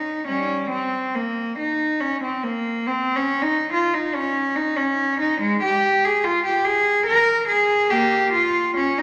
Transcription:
0.00 0.26 D#4 medium
0.27 0.68 G3 medium
0.27 0.70 C#4 medium
0.70 1.13 C4 medium
1.15 1.58 A#3 medium
1.58 2.00 D#4 medium
2.00 2.22 C#4 medium
2.23 2.44 C4 medium
2.43 2.86 A#3 medium
2.87 3.15 C4 medium
3.16 3.44 C#4 medium
3.42 3.71 D#4 medium
3.73 3.93 F4 medium
3.94 4.14 D#4 medium
4.15 4.56 C#4 medium
4.56 4.77 D#4 medium
4.77 5.19 C#4 medium
5.20 5.40 D#4 medium
5.41 5.61 G#3 loud
5.62 6.03 G4 medium
6.04 6.25 G#4 medium
6.24 6.45 F4 medium
6.45 6.65 G4 medium
6.64 7.07 G#4 medium
7.06 7.48 A#4 loud
7.48 7.90 G#4 loud
7.90 8.30 A#3 medium
7.90 8.33 G4 loud
8.33 8.76 F4 medium
8.77 8.98 C#4 medium
8.98 9.02 D#4 medium

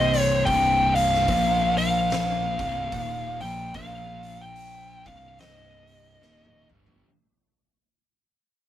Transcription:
0.00 0.43 C1 loud
0.00 0.45 C2 medium
0.00 0.46 G2 loud
0.00 0.46 C3 loud
0.00 0.45 C4 medium
0.00 0.44 G4 medium
0.00 0.46 C5 medium
0.00 0.21 D#5 medium
0.14 open hi-hat medium
0.21 0.42 C#5 medium
0.45 1.25 C1 medium
0.45 1.28 C2 loud
0.45 1.28 G2 loud
0.45 1.28 C3 loud
0.45 0.95 G5 loud
0.45 kick loud
0.45 open hi-hat medium
0.95 1.74 F5 medium
0.95 open hi-hat medium
1.14 snare soft
1.28 2.56 A#1 loud
1.28 2.58 A#2 loud
1.28 2.58 F3 loud
1.28 2.59 A#3 loud
1.28 kick loud
1.28 open hi-hat medium
1.77 3.47 F5 loud
1.77 open hi-hat medium
2.10 snare loud
2.10 open hi-hat medium
2.58 2.90 C1 medium
2.58 2.91 C2 loud
2.58 2.91 G2 loud
2.58 2.92 C3 loud
2.58 kick loud
2.58 open hi-hat soft
2.92 3.38 D#1 medium
2.92 3.40 D#2 loud
2.92 3.40 A#2 loud
2.92 3.41 D#3 loud
2.92 kick loud
2.92 open hi-hat medium
3.41 3.72 A#1 loud
3.41 3.73 A#2 loud
3.41 3.74 F3 loud
3.41 3.74 A#3 loud
3.41 3.72 G5 medium
3.41 open hi-hat medium
3.74 5.02 A#1 loud
3.74 5.04 A#2 medium
3.74 5.05 F3 medium
3.74 5.05 A#3 loud
3.74 4.43 F5 medium
3.74 kick loud
3.74 open hi-hat medium
4.23 open hi-hat medium
4.41 5.09 G5 loud
4.56 open hi-hat medium
5.06 6.17 C1 medium
5.06 6.20 C2 medium
5.06 6.20 G2 medium
5.06 6.21 C3 loud
5.06 5.40 F5 medium
5.06 kick loud
5.06 open hi-hat medium
5.39 6.67 D#5 medium
5.39 snare loud
5.39 open hi-hat medium
5.87 open hi-hat medium
6.22 6.67 D#1 medium
6.22 6.69 D#2 medium
6.22 6.70 A#2 loud
6.22 6.70 D#3 loud
6.22 snare medium
6.45 high tom medium
6.70 7.01 G1 medium
6.70 7.03 G2 loud
6.70 7.03 D3 medium
6.70 7.03 G3 loud
6.70 mid tom medium
6.87 floor tom medium

